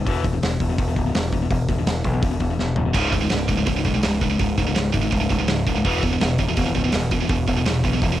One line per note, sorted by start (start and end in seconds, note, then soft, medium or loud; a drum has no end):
0.05 0.38 E1 loud
0.05 0.23 E2 medium
0.05 0.23 B2 medium
0.05 0.24 E3 loud
0.05 kick loud
0.05 open hi-hat medium
0.24 0.33 E2 medium
0.24 0.32 B2 medium
0.24 kick medium
0.24 open hi-hat medium
0.33 0.41 E2 medium
0.33 0.42 B2 medium
0.43 0.58 E1 medium
0.43 0.59 E2 medium
0.43 0.59 B2 medium
0.43 snare loud
0.43 open hi-hat medium
0.60 0.76 E1 medium
0.60 0.69 E2 medium
0.60 0.68 B2 medium
0.60 kick medium
0.60 open hi-hat medium
0.69 0.77 E2 medium
0.69 0.78 B2 medium
0.78 0.94 E1 medium
0.78 0.87 E2 medium
0.78 0.87 B2 medium
0.78 kick loud
0.78 open hi-hat medium
0.88 0.97 E2 medium
0.88 0.96 B2 medium
0.96 1.12 C#1 medium
0.96 1.06 E2 medium
0.96 1.05 B2 medium
0.96 kick medium
0.96 open hi-hat medium
1.06 1.14 E2 medium
1.06 1.15 B2 medium
1.15 1.46 E1 medium
1.15 1.31 E2 medium
1.15 1.32 B2 medium
1.15 snare loud
1.15 open hi-hat medium
1.33 1.41 E2 medium
1.33 1.41 B2 medium
1.33 kick medium
1.33 open hi-hat medium
1.42 1.49 E2 medium
1.42 1.50 B2 medium
1.51 1.67 E1 loud
1.51 1.67 E2 medium
1.51 1.67 B2 medium
1.51 kick loud
1.51 open hi-hat medium
1.69 1.85 E1 medium
1.69 1.77 E2 medium
1.69 1.77 B2 medium
1.69 kick loud
1.69 open hi-hat medium
1.78 1.86 E2 medium
1.78 1.86 B2 medium
1.86 2.02 E1 medium
1.86 2.03 E2 medium
1.86 2.04 B2 medium
1.86 snare loud
1.86 open hi-hat medium
2.04 2.20 B1 medium
2.04 2.13 E2 medium
2.04 2.12 B2 medium
2.04 kick medium
2.04 open hi-hat medium
2.13 2.21 E2 medium
2.13 2.21 B2 medium
2.22 2.39 E1 medium
2.22 2.30 E2 medium
2.22 2.30 B2 medium
2.22 kick loud
2.22 open hi-hat medium
2.31 2.39 E2 medium
2.31 2.39 B2 medium
2.40 2.56 E1 medium
2.40 2.50 E2 medium
2.40 2.49 B2 medium
2.40 kick medium
2.40 open hi-hat medium
2.50 2.58 E2 medium
2.50 2.58 B2 medium
2.59 2.75 E1 medium
2.59 2.76 E2 medium
2.59 2.76 B2 medium
2.59 snare medium
2.76 2.93 E1 medium
2.76 2.85 E2 medium
2.76 2.84 B2 medium
2.76 floor tom medium
2.85 2.94 E2 medium
2.85 2.95 B2 medium
2.94 3.26 C#1 medium
2.94 3.12 C#2 medium
2.94 3.12 G#2 medium
2.94 3.13 C#3 medium
2.94 kick loud
2.94 crash loud
3.13 3.21 C#2 medium
3.13 3.20 G#2 medium
3.13 kick loud
3.13 open hi-hat medium
3.22 3.29 C#2 medium
3.22 3.29 G#2 medium
3.30 3.48 C#1 medium
3.30 3.47 C#2 medium
3.30 3.47 G#2 medium
3.30 snare loud
3.30 open hi-hat medium
3.49 3.65 C#1 medium
3.49 3.57 C#2 medium
3.49 3.56 G#2 medium
3.49 kick medium
3.49 open hi-hat medium
3.58 3.64 C#2 medium
3.58 3.65 G#2 medium
3.66 3.83 C#1 medium
3.66 3.74 C#2 medium
3.66 3.74 G#2 medium
3.66 kick loud
3.66 open hi-hat medium
3.75 3.84 C#2 medium
3.75 3.83 G#2 medium
3.85 4.01 B1 medium
3.85 3.93 C#2 medium
3.85 3.93 G#2 medium
3.85 kick medium
3.85 open hi-hat medium
3.94 4.02 C#2 medium
3.94 4.02 G#2 medium
4.03 4.35 C#1 medium
4.03 4.20 C#2 medium
4.03 4.20 G#2 medium
4.03 snare loud
4.03 open hi-hat medium
4.21 4.30 C#2 medium
4.21 4.29 G#2 medium
4.21 kick medium
4.21 open hi-hat medium
4.30 4.38 C#2 medium
4.30 4.38 G#2 medium
4.39 4.55 C#1 loud
4.39 4.56 C#2 medium
4.39 4.56 G#2 medium
4.39 kick loud
4.39 open hi-hat medium
4.58 4.73 C#1 medium
4.58 4.66 C#2 medium
4.58 4.66 G#2 medium
4.58 kick medium
4.58 open hi-hat medium
4.67 4.74 C#2 medium
4.67 4.75 G#2 medium
4.75 4.92 C#1 medium
4.75 4.92 C#2 medium
4.75 4.92 G#2 medium
4.75 snare loud
4.75 open hi-hat medium
4.94 5.10 G#1 medium
4.94 5.03 C#2 medium
4.94 5.03 G#2 medium
4.94 kick medium
4.94 open hi-hat medium
5.04 5.12 C#2 medium
5.04 5.13 G#2 medium
5.12 5.28 C#1 medium
5.12 5.21 C#2 medium
5.12 5.20 G#2 medium
5.12 kick loud
5.12 open hi-hat medium
5.21 5.30 C#2 medium
5.21 5.30 G#2 medium
5.30 5.46 C#1 medium
5.30 5.39 C#2 medium
5.30 5.39 G#2 medium
5.30 kick medium
5.30 open hi-hat medium
5.40 5.47 C#2 medium
5.40 5.47 G#2 medium
5.48 5.64 C#1 medium
5.48 5.65 C#2 medium
5.48 5.65 G#2 medium
5.48 snare loud
5.48 open hi-hat medium
5.67 5.82 C#1 medium
5.67 5.75 C#2 medium
5.67 5.75 G#2 medium
5.67 kick medium
5.67 open hi-hat medium
5.76 5.84 C#2 medium
5.76 5.85 G#2 medium
5.85 6.16 E1 medium
5.85 6.02 E2 medium
5.85 6.01 B2 medium
5.85 6.02 E3 loud
5.85 kick loud
5.85 open hi-hat medium
6.03 6.10 E2 medium
6.03 6.10 B2 medium
6.03 kick loud
6.03 open hi-hat medium
6.11 6.19 E2 medium
6.11 6.19 B2 medium
6.20 6.37 E1 medium
6.20 6.37 E2 medium
6.20 6.37 B2 medium
6.20 snare loud
6.20 open hi-hat medium
6.38 6.55 E1 medium
6.38 6.47 E2 medium
6.38 6.46 B2 medium
6.38 kick medium
6.38 open hi-hat medium
6.48 6.56 E2 medium
6.48 6.57 B2 medium
6.57 6.73 E1 medium
6.57 6.66 E2 medium
6.57 6.65 B2 medium
6.57 kick loud
6.57 open hi-hat medium
6.67 6.75 E2 medium
6.67 6.75 B2 medium
6.75 6.91 C#1 loud
6.75 6.84 E2 medium
6.75 6.84 B2 medium
6.75 kick medium
6.75 open hi-hat medium
6.85 6.93 E2 medium
6.85 6.93 B2 loud
6.92 7.25 E1 loud
6.92 7.10 E2 medium
6.92 7.10 B2 medium
6.92 snare medium
6.92 open hi-hat medium
7.11 7.21 E2 medium
7.11 7.20 B2 medium
7.11 kick medium
7.11 open hi-hat medium
7.22 7.29 E2 medium
7.22 7.29 B2 medium
7.29 7.45 E1 medium
7.29 7.46 E2 medium
7.29 7.46 B2 medium
7.29 kick loud
7.29 open hi-hat medium
7.48 7.63 E1 medium
7.48 7.56 E2 medium
7.48 7.55 B2 medium
7.48 kick medium
7.48 open hi-hat medium
7.57 7.65 E2 medium
7.57 7.65 B2 medium
7.66 7.81 E1 medium
7.66 7.82 E2 medium
7.66 7.82 B2 medium
7.66 snare loud
7.66 open hi-hat medium
7.84 7.99 B1 medium
7.84 7.92 E2 medium
7.84 7.92 B2 medium
7.84 kick medium
7.84 open hi-hat medium
7.93 8.01 E2 medium
7.93 8.01 B2 medium
8.02 8.17 E1 medium
8.02 8.10 E2 medium
8.02 8.11 B2 medium
8.02 kick loud
8.02 open hi-hat medium
8.12 8.19 E2 medium
8.12 8.19 B2 medium